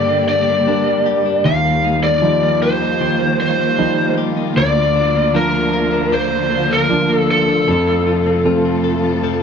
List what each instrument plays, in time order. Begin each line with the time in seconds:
Already playing: grand piano G2 D3 G3 A#3, clean electric guitar G2 D4 G4, string section D3 G3 A#3 G4, lead electric guitar D5
0.09 clean electric guitar A#3
0.28 clean electric guitar D4, lead electric guitar D5
0.48 clean electric guitar A#3
0.67 grand piano G3 A#3 D4, clean electric guitar D4
0.86 clean electric guitar A#3
1.06 clean electric guitar G4
1.26 clean electric guitar D4
1.44 grand piano D#2, string section D#3 A#3 F4, clean electric guitar D#3 G4, lead electric guitar F5
1.65 clean electric guitar A#3
1.84 clean electric guitar D#4
2.04 clean electric guitar A#3, lead electric guitar D5
2.22 grand piano F3 G3 D#4, clean electric guitar D#4
2.43 clean electric guitar A#3
2.62 clean electric guitar G4, lead electric guitar C5
2.82 clean electric guitar D#4
3.01 clean electric guitar D#3 G4
3.20 clean electric guitar A#3
3.40 clean electric guitar D#4, lead electric guitar C5
3.59 clean electric guitar A#3
3.78 grand piano F3 G3 D#4, clean electric guitar D#4
3.98 clean electric guitar A#3
4.18 clean electric guitar G4
4.37 clean electric guitar D#4
4.56 grand piano D2, string section D3 F3, clean electric guitar D3 A#4, lead electric guitar D5
4.76 clean electric guitar A#3
4.96 clean electric guitar D4
5.15 clean electric guitar A#3
5.34 grand piano F3 A#3 D4, clean electric guitar D4, lead electric guitar A#4
5.54 clean electric guitar A#3
5.73 clean electric guitar A#4
5.92 clean electric guitar D4
6.12 clean electric guitar D3 A#4, lead electric guitar C5
6.32 clean electric guitar A#3
6.51 clean electric guitar D4
6.70 clean electric guitar A#3, lead electric guitar A#4
6.89 grand piano F3 A#3 D4, clean electric guitar D4
7.09 clean electric guitar A#3
7.15 lead electric guitar A4
7.31 lead electric guitar A4
7.48 clean electric guitar D4
7.68 grand piano F2, string section C3 A3 A4, clean electric guitar F3 A4
7.87 clean electric guitar C4
8.07 clean electric guitar F4
8.26 clean electric guitar C4
8.45 grand piano F3 A3 C4, clean electric guitar F4
8.65 clean electric guitar C4
8.84 clean electric guitar A4
9.04 clean electric guitar F4
9.23 clean electric guitar F3 A4